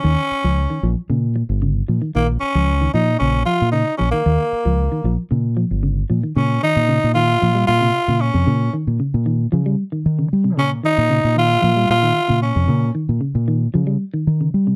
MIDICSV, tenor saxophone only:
0, 0, Header, 1, 2, 480
1, 0, Start_track
1, 0, Tempo, 527241
1, 34, Time_signature, 4, 2, 24, 8
1, 13435, End_track
2, 0, Start_track
2, 0, Title_t, "Tenor saxophone"
2, 0, Program_c, 0, 66
2, 0, Note_on_c, 0, 61, 93
2, 855, Note_off_c, 0, 61, 0
2, 1964, Note_on_c, 0, 58, 80
2, 2070, Note_off_c, 0, 58, 0
2, 2186, Note_on_c, 0, 61, 94
2, 2638, Note_off_c, 0, 61, 0
2, 2674, Note_on_c, 0, 63, 89
2, 2899, Note_off_c, 0, 63, 0
2, 2903, Note_on_c, 0, 61, 90
2, 3133, Note_off_c, 0, 61, 0
2, 3145, Note_on_c, 0, 65, 97
2, 3374, Note_off_c, 0, 65, 0
2, 3383, Note_on_c, 0, 63, 86
2, 3614, Note_off_c, 0, 63, 0
2, 3617, Note_on_c, 0, 61, 80
2, 3737, Note_off_c, 0, 61, 0
2, 3742, Note_on_c, 0, 58, 83
2, 4675, Note_off_c, 0, 58, 0
2, 5797, Note_on_c, 0, 61, 83
2, 6020, Note_off_c, 0, 61, 0
2, 6037, Note_on_c, 0, 63, 97
2, 6483, Note_off_c, 0, 63, 0
2, 6503, Note_on_c, 0, 65, 110
2, 6954, Note_off_c, 0, 65, 0
2, 6985, Note_on_c, 0, 65, 106
2, 7472, Note_on_c, 0, 61, 84
2, 7485, Note_off_c, 0, 65, 0
2, 7952, Note_off_c, 0, 61, 0
2, 9639, Note_on_c, 0, 61, 86
2, 9745, Note_off_c, 0, 61, 0
2, 9881, Note_on_c, 0, 63, 113
2, 10321, Note_off_c, 0, 63, 0
2, 10362, Note_on_c, 0, 65, 110
2, 10802, Note_off_c, 0, 65, 0
2, 10839, Note_on_c, 0, 65, 114
2, 11280, Note_off_c, 0, 65, 0
2, 11311, Note_on_c, 0, 61, 77
2, 11755, Note_off_c, 0, 61, 0
2, 13435, End_track
0, 0, End_of_file